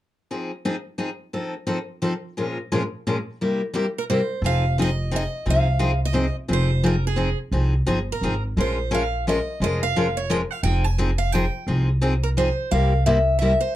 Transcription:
0.31 F3 C4 D#4 G#4
0.65 F3 C4 D#4 G#4
0.98 F3 C4 D#4 G#4
1.33 F3 C4 D#4 A4
1.67 F3 C4 D#4 A4
2.02 F3 C4 D#4 A4
2.37 A#2 F3 G#3 C#4 F4 A#4
2.72 A#2 F3 G#3 C#4 F4 A#4
3.07 A#2 F3 G#3 C#4 F4 A#4
3.41 C3 G3 A#3 E4 G4
3.74 C3 G3 A#3 E4 G4
3.98 A#4
4.10 C3 G3 A#3 E4 G4 C5
4.42 F1 F3 C4 D#4 G#4
4.46 F5
4.78 F3 C4 D#4 G#4 D#5
5.11 F3 C4 D#4 G#4
5.16 D#5
5.46 C2 F3 C4 D#4 G#4
5.50 F5
5.79 F3 C4 D#4 G#4
6.05 D#5
6.13 F3 C4 D#4 G#4
6.48 F1 F3 C4 D#4 G#4
6.53 C5
6.83 F3 C4 D#4 G#4 A#4
7.07 G#4
7.16 F3 C4 D#4 G#4
7.51 C2 F3 C4 D#4 G#4
7.86 G1 F3 C4 D#4 G#4
8.12 A#4
8.21 G#1 F3 C4 D#4 G#4
8.57 A#1 F3 G#3 C#4 F4 A#4 C5
8.91 F3 G#3 C#4 F4 A#4 F5
9.27 F3 G#3 C#4 F4 A#4 D#5
9.60 F1 F3 G#3 C#4 F4 A#4 D#5
9.83 F5
9.96 F3 G#3 C#4 F4 A#4
10.17 C#5
10.30 F3 G#3 C#4 F4 A#4 D#5
10.51 F5
10.63 F1 F3 C4 D#4 G#4 G5
10.84 G#5
10.98 F3 C4 D#4 G#4
11.18 F5
11.32 F3 C4 D#4 G#4 G5
11.67 C2 F3 C4 D#4 G#4
12.01 F3 C4 D#4 G#4
12.23 A#4
12.37 F3 C4 D#4 G#4 C5
12.71 C2 C3 G3 A#3 E4 G4 F5
13.06 C3 G3 A#3 E4 G4 E5
13.39 C3 G3 A#3 E4 G4 E5
13.61 C5

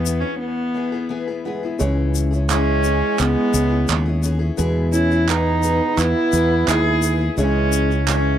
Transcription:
Already playing: E2 E3 G#3 B3 E4 B4 E5
0.05 E3 B3 E4 G#4, shaker
0.20 C#4 E4 G#4
0.24 B3
0.39 B3
0.74 E3 B3 E4 G#4
0.92 B3 E4 G#4
1.09 E3 B3 E4 G#4
1.28 B3 E4 G#4
1.45 E3 G#3 B3 E4 G#4 B4 F#5
1.63 B3 E4 G#4
1.79 C#2 C#3 E3 G#3 C#4 E4 G#4 C#5 E5, shaker
2.15 shaker
2.31 C#4 E4 G#4, shaker
2.48 C#3 E3 G#3 C#4 E4 G#4, clap, shaker
2.83 E3 C#4 E4 G#4, shaker
3.19 C#2 G#3 B3, clap, shaker
3.53 C#2 E3 C#4 E4 G#4, shaker
3.70 C#4 E4 G#4
3.88 D#2 C#3 E3 C#4 E4 G#4, clap, shaker
4.06 C#4 E4 G#4
4.23 E3 C#4 E4 G#4, shaker
4.39 C#4 E4 G#4
4.57 E2 B2 E3 G#3 B3 E4 G#4 B4, shaker
4.92 C#4 E4, shaker
5.10 B3 E4 G#4, shaker
5.28 E3 B3 D#4 G#4, clap, shaker
5.62 E3 B3 G#4, shaker
5.97 E2 B3 E4, clap, shaker
6.33 E2 E3 B3 E4 G#4, shaker
6.51 B3 E4 G#4
6.67 D#2 E3 G#3 B3 E4 G#4 B4 E5, clap, shaker
6.84 B3 E4 G#4
7.01 E3 B3 E4 G#4, shaker
7.19 B3 E4 G#4
7.37 C#2 C#3 E3 G#3 C#4 E4 G#4 C#5 E5, shaker
7.72 shaker
7.90 C#4 E4 G#4, shaker
8.07 C#3 E3 G#3 C#4 E4 G#4, clap, shaker

